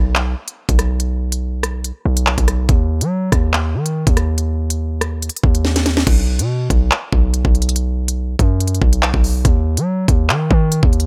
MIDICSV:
0, 0, Header, 1, 3, 480
1, 0, Start_track
1, 0, Tempo, 422535
1, 1135, Time_signature, 4, 2, 24, 8
1, 12570, End_track
2, 0, Start_track
2, 0, Title_t, "808-style bass"
2, 0, Program_c, 0, 38
2, 0, Note_on_c, 0, 35, 104
2, 395, Note_off_c, 0, 35, 0
2, 782, Note_on_c, 0, 35, 99
2, 2176, Note_off_c, 0, 35, 0
2, 2334, Note_on_c, 0, 35, 108
2, 2687, Note_off_c, 0, 35, 0
2, 2701, Note_on_c, 0, 35, 105
2, 3040, Note_off_c, 0, 35, 0
2, 3055, Note_on_c, 0, 39, 106
2, 3422, Note_on_c, 0, 54, 101
2, 3439, Note_off_c, 0, 39, 0
2, 3757, Note_off_c, 0, 54, 0
2, 3774, Note_on_c, 0, 39, 101
2, 4255, Note_on_c, 0, 51, 98
2, 4272, Note_off_c, 0, 39, 0
2, 4604, Note_off_c, 0, 51, 0
2, 4621, Note_on_c, 0, 39, 104
2, 6016, Note_off_c, 0, 39, 0
2, 6174, Note_on_c, 0, 39, 103
2, 6866, Note_off_c, 0, 39, 0
2, 6894, Note_on_c, 0, 35, 113
2, 7262, Note_on_c, 0, 47, 103
2, 7279, Note_off_c, 0, 35, 0
2, 7597, Note_off_c, 0, 47, 0
2, 7613, Note_on_c, 0, 35, 104
2, 7845, Note_off_c, 0, 35, 0
2, 8094, Note_on_c, 0, 35, 106
2, 8447, Note_off_c, 0, 35, 0
2, 8461, Note_on_c, 0, 35, 102
2, 9492, Note_off_c, 0, 35, 0
2, 9534, Note_on_c, 0, 42, 104
2, 9995, Note_off_c, 0, 42, 0
2, 10015, Note_on_c, 0, 35, 102
2, 10367, Note_off_c, 0, 35, 0
2, 10382, Note_on_c, 0, 35, 102
2, 10721, Note_off_c, 0, 35, 0
2, 10735, Note_on_c, 0, 39, 111
2, 11102, Note_on_c, 0, 54, 101
2, 11119, Note_off_c, 0, 39, 0
2, 11437, Note_off_c, 0, 54, 0
2, 11454, Note_on_c, 0, 39, 107
2, 11695, Note_on_c, 0, 51, 101
2, 11712, Note_off_c, 0, 39, 0
2, 11923, Note_off_c, 0, 51, 0
2, 11934, Note_on_c, 0, 51, 108
2, 12287, Note_off_c, 0, 51, 0
2, 12302, Note_on_c, 0, 39, 102
2, 12570, Note_off_c, 0, 39, 0
2, 12570, End_track
3, 0, Start_track
3, 0, Title_t, "Drums"
3, 175, Note_on_c, 9, 39, 121
3, 289, Note_off_c, 9, 39, 0
3, 541, Note_on_c, 9, 42, 76
3, 655, Note_off_c, 9, 42, 0
3, 782, Note_on_c, 9, 36, 99
3, 782, Note_on_c, 9, 42, 88
3, 895, Note_off_c, 9, 36, 0
3, 895, Note_off_c, 9, 42, 0
3, 896, Note_on_c, 9, 37, 89
3, 896, Note_on_c, 9, 42, 78
3, 1009, Note_off_c, 9, 37, 0
3, 1009, Note_off_c, 9, 42, 0
3, 1134, Note_on_c, 9, 42, 82
3, 1248, Note_off_c, 9, 42, 0
3, 1502, Note_on_c, 9, 42, 90
3, 1615, Note_off_c, 9, 42, 0
3, 1855, Note_on_c, 9, 37, 89
3, 1857, Note_on_c, 9, 42, 73
3, 1969, Note_off_c, 9, 37, 0
3, 1971, Note_off_c, 9, 42, 0
3, 2095, Note_on_c, 9, 42, 74
3, 2208, Note_off_c, 9, 42, 0
3, 2462, Note_on_c, 9, 42, 76
3, 2575, Note_off_c, 9, 42, 0
3, 2575, Note_on_c, 9, 39, 112
3, 2688, Note_off_c, 9, 39, 0
3, 2702, Note_on_c, 9, 36, 99
3, 2702, Note_on_c, 9, 42, 88
3, 2815, Note_off_c, 9, 36, 0
3, 2815, Note_off_c, 9, 42, 0
3, 2815, Note_on_c, 9, 42, 81
3, 2816, Note_on_c, 9, 37, 91
3, 2929, Note_off_c, 9, 37, 0
3, 2929, Note_off_c, 9, 42, 0
3, 3054, Note_on_c, 9, 42, 86
3, 3055, Note_on_c, 9, 36, 117
3, 3168, Note_off_c, 9, 36, 0
3, 3168, Note_off_c, 9, 42, 0
3, 3422, Note_on_c, 9, 42, 88
3, 3535, Note_off_c, 9, 42, 0
3, 3774, Note_on_c, 9, 36, 84
3, 3775, Note_on_c, 9, 37, 89
3, 3777, Note_on_c, 9, 42, 75
3, 3887, Note_off_c, 9, 36, 0
3, 3888, Note_off_c, 9, 37, 0
3, 3890, Note_off_c, 9, 42, 0
3, 4015, Note_on_c, 9, 39, 118
3, 4129, Note_off_c, 9, 39, 0
3, 4381, Note_on_c, 9, 42, 79
3, 4495, Note_off_c, 9, 42, 0
3, 4621, Note_on_c, 9, 36, 97
3, 4621, Note_on_c, 9, 42, 85
3, 4735, Note_off_c, 9, 36, 0
3, 4735, Note_off_c, 9, 42, 0
3, 4736, Note_on_c, 9, 37, 91
3, 4736, Note_on_c, 9, 42, 79
3, 4849, Note_off_c, 9, 37, 0
3, 4849, Note_off_c, 9, 42, 0
3, 4974, Note_on_c, 9, 42, 83
3, 5088, Note_off_c, 9, 42, 0
3, 5342, Note_on_c, 9, 42, 87
3, 5455, Note_off_c, 9, 42, 0
3, 5695, Note_on_c, 9, 37, 90
3, 5697, Note_on_c, 9, 42, 75
3, 5808, Note_off_c, 9, 37, 0
3, 5810, Note_off_c, 9, 42, 0
3, 5934, Note_on_c, 9, 42, 64
3, 6014, Note_off_c, 9, 42, 0
3, 6014, Note_on_c, 9, 42, 64
3, 6094, Note_off_c, 9, 42, 0
3, 6094, Note_on_c, 9, 42, 63
3, 6174, Note_on_c, 9, 36, 97
3, 6208, Note_off_c, 9, 42, 0
3, 6288, Note_off_c, 9, 36, 0
3, 6301, Note_on_c, 9, 42, 76
3, 6415, Note_off_c, 9, 42, 0
3, 6415, Note_on_c, 9, 38, 59
3, 6528, Note_off_c, 9, 38, 0
3, 6541, Note_on_c, 9, 42, 85
3, 6542, Note_on_c, 9, 38, 64
3, 6654, Note_off_c, 9, 38, 0
3, 6654, Note_on_c, 9, 38, 90
3, 6655, Note_off_c, 9, 42, 0
3, 6655, Note_on_c, 9, 42, 83
3, 6768, Note_off_c, 9, 38, 0
3, 6769, Note_off_c, 9, 42, 0
3, 6781, Note_on_c, 9, 38, 91
3, 6894, Note_on_c, 9, 36, 113
3, 6894, Note_on_c, 9, 42, 86
3, 6894, Note_on_c, 9, 49, 104
3, 6895, Note_off_c, 9, 38, 0
3, 7007, Note_off_c, 9, 42, 0
3, 7008, Note_off_c, 9, 36, 0
3, 7008, Note_off_c, 9, 49, 0
3, 7261, Note_on_c, 9, 42, 88
3, 7375, Note_off_c, 9, 42, 0
3, 7613, Note_on_c, 9, 36, 87
3, 7616, Note_on_c, 9, 42, 73
3, 7727, Note_off_c, 9, 36, 0
3, 7730, Note_off_c, 9, 42, 0
3, 7855, Note_on_c, 9, 39, 120
3, 7968, Note_off_c, 9, 39, 0
3, 8094, Note_on_c, 9, 36, 99
3, 8208, Note_off_c, 9, 36, 0
3, 8335, Note_on_c, 9, 42, 80
3, 8449, Note_off_c, 9, 42, 0
3, 8461, Note_on_c, 9, 36, 102
3, 8575, Note_off_c, 9, 36, 0
3, 8575, Note_on_c, 9, 42, 47
3, 8655, Note_off_c, 9, 42, 0
3, 8655, Note_on_c, 9, 42, 66
3, 8734, Note_off_c, 9, 42, 0
3, 8734, Note_on_c, 9, 42, 82
3, 8814, Note_off_c, 9, 42, 0
3, 8814, Note_on_c, 9, 42, 87
3, 8927, Note_off_c, 9, 42, 0
3, 9182, Note_on_c, 9, 42, 88
3, 9295, Note_off_c, 9, 42, 0
3, 9534, Note_on_c, 9, 36, 84
3, 9537, Note_on_c, 9, 42, 72
3, 9648, Note_off_c, 9, 36, 0
3, 9651, Note_off_c, 9, 42, 0
3, 9775, Note_on_c, 9, 42, 75
3, 9855, Note_off_c, 9, 42, 0
3, 9855, Note_on_c, 9, 42, 61
3, 9935, Note_off_c, 9, 42, 0
3, 9935, Note_on_c, 9, 42, 44
3, 10015, Note_on_c, 9, 36, 102
3, 10048, Note_off_c, 9, 42, 0
3, 10128, Note_off_c, 9, 36, 0
3, 10142, Note_on_c, 9, 42, 80
3, 10254, Note_on_c, 9, 39, 122
3, 10255, Note_off_c, 9, 42, 0
3, 10368, Note_off_c, 9, 39, 0
3, 10382, Note_on_c, 9, 36, 98
3, 10495, Note_off_c, 9, 36, 0
3, 10495, Note_on_c, 9, 46, 59
3, 10609, Note_off_c, 9, 46, 0
3, 10734, Note_on_c, 9, 42, 89
3, 10735, Note_on_c, 9, 36, 115
3, 10848, Note_off_c, 9, 36, 0
3, 10848, Note_off_c, 9, 42, 0
3, 11102, Note_on_c, 9, 42, 88
3, 11215, Note_off_c, 9, 42, 0
3, 11454, Note_on_c, 9, 36, 87
3, 11457, Note_on_c, 9, 42, 76
3, 11568, Note_off_c, 9, 36, 0
3, 11571, Note_off_c, 9, 42, 0
3, 11695, Note_on_c, 9, 39, 122
3, 11809, Note_off_c, 9, 39, 0
3, 11935, Note_on_c, 9, 36, 102
3, 12048, Note_off_c, 9, 36, 0
3, 12175, Note_on_c, 9, 42, 76
3, 12288, Note_off_c, 9, 42, 0
3, 12302, Note_on_c, 9, 36, 103
3, 12414, Note_on_c, 9, 42, 48
3, 12415, Note_off_c, 9, 36, 0
3, 12494, Note_off_c, 9, 42, 0
3, 12494, Note_on_c, 9, 42, 65
3, 12570, Note_off_c, 9, 42, 0
3, 12570, End_track
0, 0, End_of_file